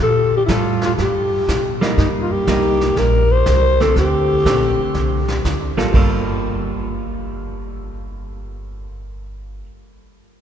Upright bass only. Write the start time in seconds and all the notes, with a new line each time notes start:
0.00 A#2
0.48 A2
0.99 G2
1.48 B2
1.98 G2
2.47 C2
2.96 A#1
3.47 C2
3.96 D2
4.45 A#1
4.79 muted upright bass stroke
4.95 C2
5.45 D2
5.60 C2
5.77 A1
5.94 G1